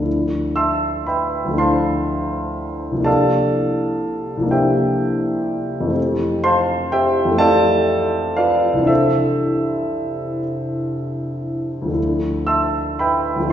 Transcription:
0.00 1.43 D2 soft
0.00 1.46 F3 soft
0.00 1.49 A3 soft
0.00 1.52 D4 soft
0.00 1.54 E4 soft
0.56 1.05 E5 soft
0.56 1.05 A5 soft
0.56 1.05 C6 soft
0.56 1.08 E6 medium
1.06 1.55 B4 soft
1.06 1.55 E5 soft
1.06 1.55 G5 soft
1.06 1.58 B5 soft
1.45 2.95 D2 soft
1.45 2.93 F3 soft
1.50 2.98 A3 soft
1.50 2.98 D4 soft
1.56 3.01 E4 soft
1.56 3.03 C5 soft
1.56 3.02 F5 soft
1.56 3.03 A5 soft
1.56 3.06 C6 medium
2.91 4.35 C2 soft
2.91 4.38 F3 soft
2.97 4.41 A#3 soft
2.97 4.44 D4 soft
3.03 4.47 G4 soft
3.03 4.48 A4 medium
3.03 4.48 D5 soft
3.03 4.49 F5 medium
3.03 4.52 A5 medium
4.37 5.85 C2 soft
4.37 5.86 F3 soft
4.42 5.88 A#3 soft
4.42 5.89 D4 soft
4.51 5.91 G4 soft
4.51 5.92 C5 soft
4.51 5.92 E5 soft
4.51 5.96 G5 medium
5.80 7.24 F2 soft
5.80 7.26 E3 soft
5.87 7.30 A3 soft
5.87 7.32 C4 soft
5.93 6.91 G4 soft
6.44 6.89 C5 medium
6.44 6.89 F5 medium
6.44 6.89 A5 medium
6.44 6.92 C6 medium
6.92 7.35 G4 medium
6.92 7.37 C5 medium
6.92 7.37 E5 medium
6.92 7.40 G5 medium
7.25 8.78 F2 soft
7.25 8.75 E3 soft
7.31 8.81 A3 soft
7.31 8.78 C4 soft
7.37 8.83 G4 soft
7.37 8.34 A4 medium
7.37 8.34 D5 medium
7.37 8.34 F5 medium
7.37 8.37 A5 medium
8.36 8.85 F4 soft
8.36 8.85 B4 medium
8.36 8.86 D5 medium
8.36 8.88 F5 medium
8.73 11.85 C2 soft
8.73 11.87 E3 soft
8.79 11.88 C4 soft
8.79 11.89 D4 soft
8.85 11.91 E4 soft
8.85 10.38 A4 soft
8.85 10.39 C5 soft
8.85 10.42 E5 medium
11.82 13.35 D2 soft
11.82 13.37 F3 soft
11.87 13.40 A3 soft
11.87 13.44 D4 soft
11.93 13.45 E4 soft
12.47 12.97 E5 soft
12.47 12.96 A5 soft
12.47 12.96 C6 soft
12.47 12.99 E6 medium
12.99 13.48 B4 soft
12.99 13.48 E5 soft
12.99 13.48 G5 soft
12.99 13.51 B5 medium
13.36 13.53 D2 soft
13.36 13.53 F3 soft
13.42 13.53 A3 soft
13.42 13.53 D4 soft
13.48 13.53 E4 soft

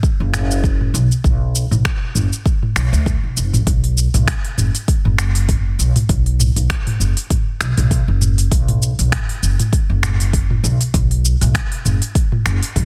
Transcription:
0.03 kick loud
0.03 shaker soft
0.20 0.89 F#1 medium
0.34 finger snap medium
0.34 mid tom medium
0.34 shaker medium
0.51 shaker soft
0.64 kick loud
0.64 shaker soft
0.81 mid tom medium
0.94 1.07 B1 medium
0.94 shaker medium
1.12 shaker soft
1.24 1.65 B1 medium
1.24 kick loud
1.24 mid tom medium
1.24 shaker soft
1.55 shaker medium
1.71 1.81 B1 medium
1.71 mid tom medium
1.71 shaker soft
1.85 finger snap medium
1.85 kick medium
1.85 shaker soft
2.15 2.28 F#1 medium
2.15 mid tom medium
2.15 shaker medium
2.33 shaker soft
2.46 kick loud
2.46 shaker soft
2.63 mid tom medium
2.76 2.89 B1 medium
2.76 finger snap medium
2.76 shaker medium
2.93 3.15 D2 medium
2.93 shaker soft
3.06 kick loud
3.06 mid tom medium
3.06 shaker soft
3.23 3.38 B1 medium
3.37 3.55 F#1 medium
3.37 shaker medium
3.53 3.64 B1 medium
3.53 mid tom medium
3.53 shaker soft
3.67 4.07 B1 medium
3.67 kick loud
3.67 mid tom medium
3.67 open hi-hat medium
3.67 shaker soft
3.84 open hi-hat soft
3.98 shaker medium
4.14 4.24 B1 medium
4.14 mid tom medium
4.14 open hi-hat soft
4.14 shaker soft
4.27 finger snap medium
4.27 kick medium
4.27 open hi-hat soft
4.27 shaker soft
4.45 open hi-hat soft
4.58 4.70 F#1 medium
4.58 mid tom medium
4.58 shaker medium
4.75 open hi-hat soft
4.75 shaker soft
4.88 kick loud
4.88 open hi-hat soft
4.88 shaker soft
5.05 5.74 F#1 medium
5.05 mid tom medium
5.18 finger snap medium
5.18 shaker medium
5.35 open hi-hat soft
5.35 shaker soft
5.49 kick loud
5.49 mid tom medium
5.49 open hi-hat soft
5.49 shaker soft
5.79 5.92 B1 medium
5.79 shaker medium
5.96 mid tom medium
5.96 open hi-hat soft
5.96 shaker soft
6.09 6.50 B1 medium
6.09 kick loud
6.09 open hi-hat medium
6.09 shaker soft
6.26 open hi-hat soft
6.40 mid tom medium
6.40 shaker medium
6.56 6.66 B1 medium
6.56 open hi-hat soft
6.56 shaker soft
6.70 finger snap medium
6.70 kick medium
6.70 open hi-hat medium
6.70 shaker soft
6.87 mid tom medium
6.87 open hi-hat soft
7.00 7.13 F#1 medium
7.00 shaker medium
7.17 open hi-hat soft
7.17 shaker soft
7.30 kick medium
7.30 mid tom medium
7.30 open hi-hat medium
7.30 shaker soft
7.60 7.73 B1 medium
7.60 finger snap medium
7.60 shaker medium
7.77 7.99 B1 medium
7.77 mid tom medium
7.77 open hi-hat soft
7.77 shaker soft
7.91 kick loud
7.91 open hi-hat medium
7.91 shaker soft
8.08 8.46 F#1 medium
8.21 mid tom medium
8.21 shaker medium
8.38 open hi-hat soft
8.38 shaker soft
8.52 8.92 B1 medium
8.52 kick medium
8.52 open hi-hat medium
8.52 shaker soft
8.68 mid tom medium
8.68 open hi-hat soft
8.82 shaker medium
8.99 9.09 B1 medium
8.99 open hi-hat soft
8.99 shaker soft
9.12 finger snap medium
9.12 kick medium
9.12 mid tom medium
9.12 open hi-hat medium
9.12 shaker soft
9.29 open hi-hat soft
9.43 9.55 F#1 medium
9.43 shaker medium
9.60 mid tom medium
9.60 open hi-hat soft
9.60 shaker soft
9.73 kick loud
9.73 open hi-hat medium
9.73 shaker soft
9.90 10.58 F#1 medium
10.03 finger snap medium
10.03 mid tom medium
10.03 shaker medium
10.20 open hi-hat soft
10.20 shaker soft
10.33 kick loud
10.33 open hi-hat medium
10.33 shaker soft
10.50 mid tom medium
10.64 10.76 B1 medium
10.64 shaker medium
10.81 open hi-hat soft
10.81 shaker soft
10.94 11.34 B1 medium
10.94 kick loud
10.94 mid tom medium
10.94 open hi-hat medium
10.94 shaker soft
11.11 open hi-hat soft
11.25 shaker medium
11.41 11.51 B1 medium
11.41 mid tom medium
11.41 open hi-hat soft
11.41 shaker soft
11.55 finger snap medium
11.55 kick loud
11.55 open hi-hat medium
11.55 shaker soft
11.72 open hi-hat soft
11.85 11.98 F#1 medium
11.85 mid tom medium
11.85 shaker medium
12.02 open hi-hat soft
12.02 shaker soft
12.15 kick loud
12.15 open hi-hat medium
12.15 shaker soft
12.32 mid tom medium
12.46 12.58 F#1 medium
12.46 finger snap medium
12.46 shaker medium
12.63 open hi-hat soft
12.63 shaker soft
12.76 12.85 B1 medium
12.76 kick loud
12.76 mid tom medium
12.76 open hi-hat medium
12.76 shaker soft

